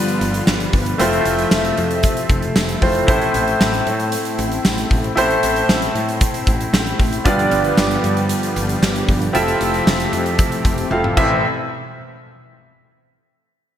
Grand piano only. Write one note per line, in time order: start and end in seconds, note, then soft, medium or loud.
0.00 1.01 G2 medium
0.00 0.95 G3 medium
0.00 0.95 B3 medium
0.00 0.96 D4 medium
0.00 0.96 F4 medium
0.00 0.96 B4 loud
0.98 2.78 A3 medium
0.98 2.78 C4 medium
0.98 2.78 E4 medium
0.98 2.79 F4 medium
0.98 2.79 C5 medium
2.81 3.08 A3 medium
2.81 3.08 C4 medium
2.81 3.05 E4 medium
2.81 3.08 F4 medium
2.81 3.07 C5 medium
3.07 3.82 A2 medium
3.07 5.12 E4 medium
3.07 5.13 A4 medium
3.07 5.13 C5 medium
5.16 5.91 A2 medium
5.16 7.21 E4 medium
5.16 7.22 A4 medium
5.16 7.22 C5 medium
7.24 8.00 G2 medium
7.24 9.30 B3 medium
7.24 9.30 D4 medium
7.24 9.30 F4 medium
7.24 9.31 G4 medium
7.24 9.31 D5 medium
9.33 10.87 C4 medium
9.33 10.87 E4 medium
9.33 10.88 F4 medium
9.33 10.88 A4 medium
9.33 10.88 E5 medium
10.91 11.16 C4 medium
10.91 11.16 E4 medium
10.91 11.17 F4 medium
10.91 11.16 A4 medium
10.91 11.18 F5 medium
11.17 11.41 A1 medium
11.17 11.41 C4 medium
11.17 11.41 E4 medium
11.17 11.41 A4 medium
11.17 11.41 E5 medium